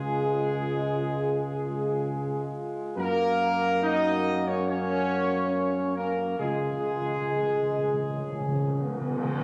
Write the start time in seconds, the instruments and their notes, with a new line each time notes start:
Already playing: tuba C#2, trombone section G#3, french horn section G#3 F4, trumpet section G#4
2.96 tuba F#2, french horn section A#3 F#4, trombone section A#3, trumpet section A#4
3.83 trombone section D#4, trumpet section D#5
4.47 trombone section C#4, trumpet section C#5
4.67 trombone section C#4, trumpet section C#5
5.95 trombone section A#3, trumpet section A#4
6.38 tuba C#2, timpani C#3, trombone section G#3, french horn section G#3 F4, trumpet section G#4
6.47 timpani C#3
6.55 timpani C#3
6.63 timpani C#3
6.70 timpani C#3
6.86 timpani C#3
6.94 timpani C#3
7.01 timpani C#3
7.08 timpani C#3
7.16 timpani C#3
7.24 timpani C#3, french horn section G#3
7.32 timpani C#3
7.40 timpani C#3
7.48 timpani C#3
7.55 timpani C#3
7.62 timpani C#3
7.71 timpani C#3
7.78 timpani C#3
7.86 timpani C#3
7.93 timpani C#3
8.01 timpani C#3
8.09 timpani C#3
8.15 timpani C#3, french horn section C#4
8.25 timpani C#3
8.32 timpani C#3
8.40 timpani C#3
8.48 timpani C#3
8.55 timpani C#3
8.62 timpani C#3
8.70 timpani C#3
8.78 timpani C#3, french horn section B3
8.85 timpani C#3
8.92 timpani C#3
9.01 timpani C#3, french horn section B3
9.09 timpani C#3
9.16 timpani C#3
9.24 timpani C#3
9.33 timpani C#3
9.40 timpani C#3